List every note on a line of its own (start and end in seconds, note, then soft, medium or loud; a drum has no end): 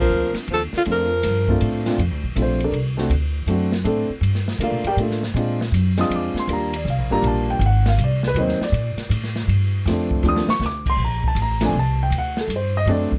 0.00 0.33 F3 medium
0.00 0.77 A#3 medium
0.00 0.77 C4 soft
0.00 0.78 D4 soft
0.00 0.78 F4 medium
0.00 0.34 A#4 loud
0.10 0.32 D2 medium
0.10 hi-hat pedal medium
0.34 muted upright bass stroke soft
0.34 snare soft
0.34 ride soft
0.48 0.70 D#2 medium
0.48 0.61 F3 medium
0.48 ride medium
0.53 0.63 A4 medium
0.73 0.81 D3 medium
0.73 muted upright bass stroke soft
0.73 snare soft
0.77 0.82 F4 medium
0.85 1.22 F2 medium
0.85 1.58 F3 medium
0.85 1.07 A3 medium
0.85 1.07 C4 medium
0.85 1.08 D4 medium
0.85 1.08 F4 medium
0.85 ride medium
0.91 1.59 A#4 loud
1.23 1.60 G2 medium
1.23 snare soft
1.23 hi-hat pedal soft
1.23 ride medium
1.48 1.83 A3 medium
1.48 1.83 C4 medium
1.48 1.83 D4 medium
1.48 1.84 F4 medium
1.48 kick medium
1.61 1.97 A2 medium
1.61 hi-hat pedal soft
1.61 ride medium
1.86 1.97 A#2 medium
1.86 1.97 A3 medium
1.86 1.98 C4 medium
1.86 1.98 D4 medium
1.86 1.98 F4 medium
1.86 snare soft
1.86 ride soft
1.98 2.11 F2 medium
1.98 ride medium
2.11 2.23 D2 medium
2.24 2.35 A#1 medium
2.36 2.71 A#1 medium
2.36 2.58 A3 medium
2.36 2.40 C4 medium
2.36 2.58 D4 soft
2.36 2.58 F4 medium
2.36 hi-hat pedal medium
2.36 ride medium
2.42 2.62 C4 medium
2.42 2.62 C5 medium
2.60 2.75 A4 medium
2.60 2.75 D5 medium
2.60 ride soft
2.64 2.75 D4 medium
2.64 2.75 A#4 medium
2.72 3.09 C2 medium
2.72 ride medium
2.97 3.09 A3 medium
2.97 3.09 C4 medium
2.97 3.10 D4 medium
2.97 3.10 F#4 medium
2.97 snare soft
3.10 3.46 D2 medium
3.10 ride medium
3.46 3.84 F#2 medium
3.46 3.70 A3 medium
3.46 3.70 C4 medium
3.46 3.70 D4 medium
3.46 3.71 F#4 medium
3.46 hi-hat pedal medium
3.46 ride medium
3.72 snare medium
3.84 4.08 A2 medium
3.84 4.07 A3 medium
3.84 4.07 C4 medium
3.84 4.07 D4 medium
3.84 4.08 A4 medium
3.84 ride medium
4.10 muted upright bass stroke soft
4.21 4.58 G2 medium
4.21 ride medium
4.35 snare soft
4.48 snare soft
4.58 4.71 D3 medium
4.58 4.82 A3 medium
4.58 4.82 A#3 medium
4.58 4.83 D4 medium
4.58 4.83 F4 medium
4.58 hi-hat pedal medium
4.58 ride medium
4.63 4.86 A#4 medium
4.63 4.86 D5 medium
4.63 4.86 F5 medium
4.71 4.83 A#2 medium
4.84 4.96 G2 medium
4.84 4.94 G4 medium
4.84 4.94 A#4 medium
4.84 4.94 G5 loud
4.84 ride soft
4.88 4.95 D5 medium
4.96 5.33 A2 medium
4.96 5.21 A3 medium
4.96 5.21 A#3 medium
4.96 5.21 D4 medium
4.96 ride medium
5.01 5.21 F4 medium
5.11 snare soft
5.23 snare soft
5.34 5.71 A#2 medium
5.34 5.58 G#3 medium
5.34 5.58 C4 medium
5.34 5.58 D4 medium
5.34 5.59 F4 medium
5.34 ride medium
5.61 snare medium
5.72 6.09 F#2 medium
5.72 hi-hat pedal medium
5.72 ride medium
5.98 6.46 G#3 medium
5.98 6.46 C4 medium
5.98 6.46 D4 medium
5.98 6.47 F4 medium
5.98 6.12 D#6 medium
5.98 snare soft
5.98 ride soft
6.10 6.33 F2 medium
6.10 ride medium
6.16 6.37 D6 medium
6.34 muted upright bass stroke soft
6.34 snare soft
6.39 6.50 C6 medium
6.47 6.84 D#2 medium
6.47 6.70 G3 medium
6.47 6.71 A#3 soft
6.47 6.71 D4 medium
6.47 6.71 F4 medium
6.47 ride medium
6.53 6.75 A#5 medium
6.73 6.87 D5 medium
6.73 ride medium
6.85 6.98 C2 medium
6.85 hi-hat pedal medium
6.90 7.12 F5 medium
6.98 7.10 A#1 medium
7.10 7.22 G1 medium
7.10 7.59 G3 medium
7.10 7.59 A#3 medium
7.10 7.59 D4 medium
7.10 7.60 F4 medium
7.10 7.24 A#5 loud
7.22 7.59 A#1 medium
7.22 ride medium
7.27 7.49 A5 medium
7.50 7.62 G5 medium
7.59 7.97 G#1 medium
7.59 ride medium
7.66 7.87 F#5 medium
7.86 8.00 F5 medium
7.86 snare medium
7.86 ride medium
7.97 8.34 C2 medium
7.97 hi-hat pedal medium
7.97 ride medium
8.04 8.25 D5 medium
8.23 snare soft
8.28 8.38 B4 medium
8.35 8.58 D#2 medium
8.35 8.58 F#3 medium
8.35 8.59 A#3 medium
8.35 8.59 C4 medium
8.35 8.59 D#4 medium
8.35 ride medium
8.41 8.62 C5 medium
8.48 snare soft
8.60 9.46 D5 medium
8.60 muted upright bass stroke soft
8.60 snare medium
8.72 8.96 A#2 medium
8.72 ride medium
8.96 muted upright bass stroke soft
8.96 snare soft
8.96 ride medium
9.10 9.47 A2 medium
9.10 hi-hat pedal medium
9.10 ride medium
9.24 snare soft
9.36 snare soft
9.48 9.85 G2 medium
9.48 ride medium
9.85 10.22 F2 medium
9.85 10.22 F3 medium
9.85 10.23 A3 medium
9.85 10.23 C4 medium
9.85 10.24 D4 medium
9.85 snare soft
9.85 ride medium
10.11 kick medium
10.23 10.46 D#2 medium
10.23 10.46 F3 medium
10.23 10.46 A3 medium
10.23 10.46 C4 medium
10.23 10.47 D4 medium
10.23 hi-hat pedal medium
10.28 10.50 D#6 medium
10.36 snare medium
10.47 10.62 C#6 loud
10.47 muted upright bass stroke soft
10.47 snare medium
10.60 10.96 D2 medium
10.60 snare medium
10.66 10.88 D6 loud
10.86 11.01 C6 loud
10.86 kick medium
10.86 crash medium
10.97 11.35 A#1 medium
11.05 11.26 A#5 medium
11.24 11.39 A5 medium
11.24 kick medium
11.35 11.72 A1 medium
11.35 hi-hat pedal medium
11.35 ride medium
11.42 11.63 A#5 medium
11.61 11.73 F3 medium
11.61 11.73 A3 medium
11.61 11.74 C4 medium
11.61 11.74 D4 medium
11.61 snare medium
11.61 ride medium
11.65 11.76 G#5 medium
11.73 12.10 C2 medium
11.79 12.01 A5 medium
12.03 12.14 G5 medium
12.10 12.47 D2 medium
12.10 ride medium
12.18 12.39 F#5 medium
12.37 12.51 A4 medium
12.37 snare medium
12.47 12.85 G2 medium
12.47 hi-hat pedal medium
12.47 ride medium
12.56 12.77 C5 medium
12.77 12.89 D#5 loud
12.86 13.09 F#2 medium
12.86 13.09 F#3 medium
12.86 13.10 A3 medium
12.86 13.10 C4 medium
12.86 13.10 D4 medium
12.86 ride medium
12.91 13.04 D5 medium
13.12 muted upright bass stroke soft
13.12 kick medium